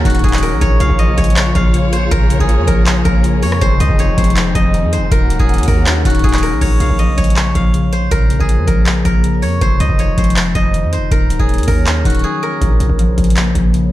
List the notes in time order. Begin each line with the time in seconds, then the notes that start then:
Already playing: D#3 F#3 A#3 C#4 D#4 F#4 G#4 A#4 C5 D#5
0.05 D#1 D#3 F#4, kick, closed hi-hat
0.10 closed hi-hat
0.15 closed hi-hat
0.19 closed hi-hat
0.23 D#1 F#3 G#4, kick, closed hi-hat
0.29 closed hi-hat
0.33 clap, closed hi-hat
0.38 closed hi-hat
0.43 A#4, open hi-hat
0.52 A#1
0.61 A#1 A#2 F4 G#4 C#5, kick, closed hi-hat
0.80 A#1 C#3 F5, closed hi-hat
0.90 A#1, kick
0.99 F3 D#5, closed hi-hat
1.17 A#1 G#3 C#5, kick, closed hi-hat
1.24 closed hi-hat
1.30 closed hi-hat
1.36 A#3, clap, closed hi-hat
1.55 A#1 A#2 F5, kick, closed hi-hat
1.74 C#3, closed hi-hat
1.93 C5, closed hi-hat
2.11 A#1 A#2 A#4, kick, closed hi-hat
2.30 C#3, closed hi-hat
2.40 A#1 G#4, kick
2.49 F3, closed hi-hat
2.58 F2
2.67 A#1 G#3 A#4, kick, closed hi-hat
2.86 A#3, clap, closed hi-hat
3.05 A#1 A#2 A#4, kick, closed hi-hat
3.24 C#3, closed hi-hat
3.42 F2 C#5, open hi-hat
3.52 cross-stick
3.61 F1 F2 F3 C4 D#4 C5, kick, closed hi-hat
3.80 C2 D#3 D#5, closed hi-hat
3.90 F1, kick
3.99 F3 C#5, closed hi-hat
4.18 F1 G#3 C5, kick, closed hi-hat
4.24 closed hi-hat
4.30 closed hi-hat
4.36 C4, clap, closed hi-hat
4.55 F1 F2 D#5, kick, closed hi-hat
4.74 D#3, closed hi-hat
4.83 F2
4.93 C5, closed hi-hat
4.97 F1
5.12 D#1 D#3 A#3 C#4 F#4 A#4, kick, closed hi-hat
5.30 F#3, closed hi-hat
5.39 D#1 G#4, kick
5.49 A#3, closed hi-hat
5.54 closed hi-hat
5.58 D#2, closed hi-hat
5.63 closed hi-hat
5.68 D#2 C#4 A#4, kick, open hi-hat
5.86 D#4, clap, closed hi-hat
6.05 D#1 D#3 F#4, kick, closed hi-hat
6.10 closed hi-hat
6.15 closed hi-hat
6.19 closed hi-hat
6.24 D#1 F#3 G#4, kick, closed hi-hat
6.29 closed hi-hat
6.33 clap, closed hi-hat
6.38 closed hi-hat
6.43 A#4, open hi-hat
6.52 A#1
6.61 A#1 A#2 C#5, kick, closed hi-hat, crash
6.80 A#1 C#3 F5, closed hi-hat
6.90 A#1, kick
6.99 F3 D#5, closed hi-hat
7.17 A#1 G#3 C#5, kick, closed hi-hat
7.24 closed hi-hat
7.30 closed hi-hat
7.36 A#3, clap, closed hi-hat
7.55 A#1 A#2 F5, kick, closed hi-hat
7.74 C#3, closed hi-hat
7.93 C5, closed hi-hat
8.11 A#1 A#2 A#4, kick, closed hi-hat
8.30 C#3, closed hi-hat
8.40 A#1 G#4, kick
8.49 F3, closed hi-hat
8.58 F2
8.67 A#1 G#3 A#4, kick, closed hi-hat
8.86 A#3, clap, closed hi-hat
9.05 A#1 A#2 A#4, kick, closed hi-hat
9.24 C#3, closed hi-hat
9.42 F2 C#5, open hi-hat
9.61 F1 F2 C5, kick, closed hi-hat
9.80 C2 D#3 D#5, closed hi-hat
9.89 F1, kick
9.99 F3 C#5, closed hi-hat
10.18 F1 G#3 C5, kick, closed hi-hat
10.24 closed hi-hat
10.30 closed hi-hat
10.36 C4, clap, closed hi-hat
10.55 F1 F2 D#5, kick, closed hi-hat
10.74 D#3, closed hi-hat
10.83 F2
10.93 C5, closed hi-hat
10.97 F1
11.11 D#1 D#3 A#4, kick, closed hi-hat
11.30 F#3, closed hi-hat
11.39 D#1 G#4, kick
11.49 A#3, closed hi-hat
11.54 closed hi-hat
11.58 D#2, closed hi-hat
11.63 closed hi-hat
11.68 D#2 C#4 A#4, kick, open hi-hat
11.86 D#4, clap, closed hi-hat
12.05 D#1 D#3 F#4, kick, closed hi-hat
12.10 closed hi-hat
12.15 closed hi-hat
12.19 closed hi-hat
12.23 F#3 G#4
12.43 A#4
12.61 A#1 A#2, kick, closed hi-hat
12.80 A#1 C#3, closed hi-hat
12.90 A#1, kick
12.99 F3, closed hi-hat
13.18 A#1 G#3, kick, closed hi-hat
13.24 closed hi-hat
13.30 closed hi-hat
13.37 A#3, clap, closed hi-hat
13.55 A#1 A#2, kick, closed hi-hat
13.74 C#3, closed hi-hat